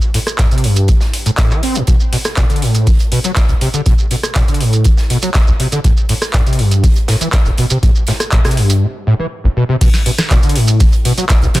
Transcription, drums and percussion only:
0.01 shekere
0.14 closed hi-hat, open hi-hat
0.27 cross-stick, closed hi-hat, shekere
0.39 kick, snare, clap, closed hi-hat, shekere
0.51 closed hi-hat, shekere
0.58 closed hi-hat
0.64 closed hi-hat, open hi-hat
0.76 closed hi-hat, shekere
0.88 kick, closed hi-hat, shekere
1.01 snare, shekere
1.14 closed hi-hat, open hi-hat
1.26 closed hi-hat, shekere
1.38 kick, snare, clap, closed hi-hat, shekere
1.50 clap, shekere
1.63 closed hi-hat, open hi-hat
1.75 closed hi-hat, shekere
1.87 kick, closed hi-hat, shekere
2.00 shekere
2.13 closed hi-hat, open hi-hat
2.25 cross-stick, snare, closed hi-hat, shekere
2.37 kick, snare, clap, closed hi-hat, shekere
2.50 closed hi-hat, shekere
2.56 closed hi-hat
2.62 closed hi-hat, open hi-hat
2.74 closed hi-hat, shekere
2.87 kick, closed hi-hat, open hi-hat, shekere
2.99 closed hi-hat, shekere
3.12 closed hi-hat, open hi-hat
3.24 closed hi-hat, shekere
3.36 kick, snare, clap, closed hi-hat, shekere
3.49 closed hi-hat, shekere
3.61 closed hi-hat, open hi-hat
3.74 closed hi-hat, shekere
3.86 kick, closed hi-hat, shekere
3.98 shekere
4.11 closed hi-hat, open hi-hat
4.23 cross-stick, closed hi-hat, shekere
4.35 kick, snare, clap, closed hi-hat, shekere
4.48 closed hi-hat, shekere
4.54 closed hi-hat
4.61 closed hi-hat, open hi-hat
4.73 closed hi-hat, shekere
4.84 kick, closed hi-hat, shekere
4.97 snare, shekere
5.10 closed hi-hat, open hi-hat
5.22 closed hi-hat, shekere
5.34 kick, snare, clap, closed hi-hat, shekere
5.47 shekere
5.60 closed hi-hat, open hi-hat
5.72 closed hi-hat, shekere
5.84 kick, closed hi-hat, shekere
5.97 shekere
6.09 closed hi-hat, open hi-hat
6.22 cross-stick, snare, closed hi-hat, shekere
6.34 kick, snare, clap, closed hi-hat, shekere
6.46 closed hi-hat, shekere
6.53 closed hi-hat
6.59 open hi-hat
6.71 closed hi-hat, shekere
6.84 kick, closed hi-hat, open hi-hat, shekere
6.96 closed hi-hat, shekere
7.08 snare, closed hi-hat, open hi-hat
7.21 closed hi-hat, shekere
7.33 kick, snare, clap, closed hi-hat, shekere
7.45 closed hi-hat, shekere
7.58 closed hi-hat, open hi-hat
7.70 closed hi-hat, shekere
7.83 kick, closed hi-hat, shekere
7.95 shekere
8.07 snare, closed hi-hat, open hi-hat
8.20 cross-stick, closed hi-hat, shekere
8.32 kick, clap, closed hi-hat, shekere
8.45 cross-stick, snare, closed hi-hat, shekere
8.51 closed hi-hat
8.57 open hi-hat
8.70 closed hi-hat, shekere
9.81 kick, closed hi-hat, crash, shekere
9.94 snare, shekere
10.06 closed hi-hat, open hi-hat
10.18 cross-stick, snare, closed hi-hat, shekere
10.30 kick, snare, clap, closed hi-hat, shekere
10.43 closed hi-hat, shekere
10.49 closed hi-hat
10.56 closed hi-hat, open hi-hat
10.67 closed hi-hat, shekere
10.80 kick, closed hi-hat, open hi-hat, shekere
10.92 closed hi-hat, shekere
11.05 closed hi-hat, open hi-hat
11.18 closed hi-hat, shekere
11.29 kick, snare, clap, closed hi-hat, shekere
11.42 closed hi-hat, shekere
11.54 snare, closed hi-hat, open hi-hat

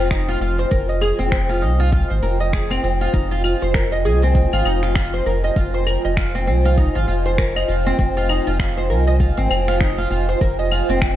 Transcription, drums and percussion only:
0.11 finger snap, kick, open hi-hat, cabasa
0.29 cabasa
0.41 cabasa
0.59 open hi-hat, cabasa
0.71 kick, open hi-hat, cabasa
0.89 open hi-hat, cabasa
1.02 cabasa, claves
1.20 open hi-hat, cabasa
1.32 finger snap, kick, open hi-hat, cabasa
1.50 open hi-hat, cabasa
1.62 cabasa
1.80 open hi-hat, cabasa
1.92 kick, open hi-hat, cabasa
2.10 cabasa
2.23 cabasa
2.41 open hi-hat, cabasa
2.53 finger snap, kick, open hi-hat, cabasa
2.71 cabasa, claves
2.84 cabasa
3.01 open hi-hat, cabasa
3.14 kick, open hi-hat, cabasa
3.31 open hi-hat, cabasa
3.44 cabasa, claves
3.62 open hi-hat, cabasa
3.74 finger snap, kick, open hi-hat, cabasa
3.92 open hi-hat, cabasa
4.05 cabasa
4.22 open hi-hat, cabasa
4.35 kick, open hi-hat, cabasa
4.53 open hi-hat, cabasa, claves
4.65 cabasa, claves
4.83 finger snap, open hi-hat, cabasa
4.95 finger snap, kick, open hi-hat, cabasa
5.14 cabasa
5.26 cabasa
5.44 open hi-hat, cabasa
5.56 kick, open hi-hat, cabasa
5.74 open hi-hat, cabasa
5.87 cabasa, claves
6.05 open hi-hat, cabasa
6.17 finger snap, kick, open hi-hat, cabasa
6.35 open hi-hat, cabasa
6.48 cabasa
6.65 open hi-hat, cabasa
6.78 kick, open hi-hat, cabasa
6.96 cabasa
7.08 cabasa
7.26 open hi-hat, cabasa
7.38 finger snap, kick, open hi-hat, cabasa
7.56 cabasa, claves
7.69 cabasa
7.86 open hi-hat, cabasa
7.99 kick, open hi-hat, cabasa
8.17 open hi-hat, cabasa
8.29 cabasa, claves
8.47 open hi-hat, cabasa
8.59 finger snap, kick, open hi-hat, cabasa
8.77 open hi-hat, cabasa
8.90 cabasa
9.08 open hi-hat, cabasa
9.20 kick, open hi-hat, cabasa
9.38 cabasa
9.51 cabasa, claves
9.68 finger snap, open hi-hat, cabasa
9.81 finger snap, kick, open hi-hat, cabasa
9.99 cabasa
10.11 cabasa
10.29 open hi-hat, cabasa
10.41 kick, open hi-hat, cabasa
10.59 open hi-hat, cabasa
10.71 cabasa, claves
10.89 open hi-hat, cabasa
11.02 finger snap, kick, open hi-hat, cabasa

